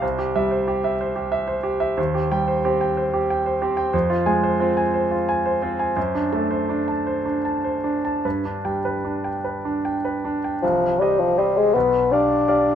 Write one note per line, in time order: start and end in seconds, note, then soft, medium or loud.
0.02 1.93 C2 soft
0.02 0.28 C5 soft
0.19 0.45 G4 soft
0.35 0.87 G3 soft
0.35 0.62 E5 soft
0.51 0.77 C5 soft
0.68 0.94 G4 soft
0.84 1.10 E5 soft
1.01 1.26 C5 soft
1.16 1.41 G4 soft
1.32 1.57 E5 soft
1.47 1.74 C5 soft
1.63 1.90 G4 soft
1.80 1.97 E5 soft
1.97 3.89 D#2 soft
1.97 2.25 C5 soft
2.14 2.42 G4 soft
2.31 2.84 G3 soft
2.31 2.58 G5 soft
2.48 2.74 C5 soft
2.65 3.16 C4 soft
2.65 2.91 G4 soft
2.81 3.07 G5 soft
2.97 3.23 C5 soft
3.14 3.39 G4 soft
3.30 3.55 G5 soft
3.46 3.71 C5 soft
3.62 3.94 C4 soft
3.62 3.87 G4 soft
3.77 3.93 G5 soft
3.93 5.92 F2 soft
3.93 4.20 C5 soft
4.10 4.36 F4 soft
4.26 4.80 G#3 soft
4.26 4.53 G#5 soft
4.44 4.70 C5 soft
4.60 5.14 C4 soft
4.60 4.87 F4 soft
4.77 5.04 G#5 soft
4.94 5.21 C5 soft
5.11 5.38 F4 soft
5.29 5.55 G#5 soft
5.46 5.72 C5 soft
5.62 5.97 C4 soft
5.62 5.90 F4 soft
5.79 5.97 G#5 soft
5.96 8.20 F#2 soft
5.96 6.25 C5 soft
6.15 6.44 D4 soft
6.33 6.91 A3 soft
6.33 6.62 A5 soft
6.51 6.80 C5 soft
6.69 7.24 D4 soft
6.88 7.18 A5 soft
7.07 7.37 C5 soft
7.26 7.56 D4 soft
7.45 7.76 A5 soft
7.64 7.96 C5 soft
7.84 8.24 D4 soft
8.05 8.25 A5 soft
8.25 10.59 G2 soft
8.25 8.57 B4 soft
8.45 8.77 D4 soft
8.65 9.28 G3 soft
8.65 8.96 G5 soft
8.85 9.16 B4 soft
9.05 9.36 D4 soft
9.24 9.56 G5 soft
9.44 9.76 B4 soft
9.65 9.96 D4 soft
9.85 10.16 G5 soft
10.05 10.36 B4 soft
10.25 10.55 D4 soft
10.44 10.63 G5 soft
10.62 10.99 C1 soft
10.62 11.00 C2 soft
10.62 11.01 F3 medium
11.00 11.21 G3 soft
11.00 11.34 G4 soft
11.00 11.34 C5 soft
11.00 11.35 D#5 soft
11.19 11.40 F3 soft
11.38 11.59 G3 soft
11.38 11.71 G4 soft
11.38 11.72 C5 soft
11.38 11.72 D#5 soft
11.57 11.76 G#3 soft
11.75 12.11 B1 soft
11.75 12.11 B2 soft
11.75 12.13 B3 medium
12.11 12.75 D4 medium
12.11 12.44 G4 soft
12.11 12.44 D5 soft
12.11 12.45 F5 soft
12.48 12.75 G4 soft
12.48 12.75 D5 soft
12.48 12.75 F5 soft